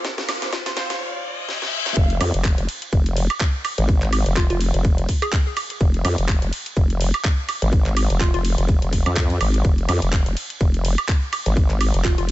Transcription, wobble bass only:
1.97 2.19 F1 loud
2.21 2.32 F2 loud
2.34 2.56 F1 loud
2.58 2.67 F1 loud
2.93 3.28 F1 loud
3.78 4.24 G#1 loud
4.26 4.48 F1 loud
4.50 4.72 F1 loud
4.74 5.07 F1 loud
5.81 6.03 F1 loud
6.05 6.16 F2 loud
6.18 6.40 F1 loud
6.42 6.51 F1 loud
6.77 7.12 F1 loud
7.62 8.08 G#1 loud
8.10 8.32 F1 loud
8.34 8.56 F1 loud
8.58 8.80 F1 loud
8.82 9.04 F1 loud
9.06 9.39 F2 medium
9.41 9.63 G#1 loud
9.65 9.87 F1 loud
9.89 10.00 F2 loud
10.02 10.24 F1 loud
10.26 10.35 F1 medium
10.61 10.96 F1 loud
11.46 11.92 G#1 loud
11.94 12.16 F1 loud
12.18 12.31 F1 loud

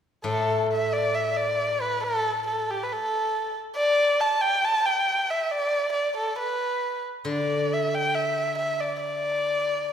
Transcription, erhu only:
0.25 0.67 A4 medium
0.73 0.94 E5 medium
0.93 1.16 D5 medium
1.14 1.38 E5 medium
1.37 1.83 D5 medium
1.82 2.03 B4 medium
2.03 2.44 A4 medium
2.47 2.72 A4 medium
2.71 2.85 G4 medium
2.83 2.94 B4 medium
2.93 3.56 A4 medium
3.76 4.22 D5 medium
4.20 4.43 A5 medium
4.41 4.66 G5 medium
4.65 4.87 A5 medium
4.86 5.31 G5 medium
5.30 5.52 E5 medium
5.51 5.92 D5 medium
5.93 6.14 D5 medium
6.17 6.37 A4 medium
6.39 7.01 B4 medium
7.29 7.74 D5 medium
7.73 7.96 E5 medium
7.94 8.16 G5 medium
8.15 8.57 E5 medium
8.58 8.82 E5 medium
8.80 9.00 D5 medium
9.01 9.93 D5 medium

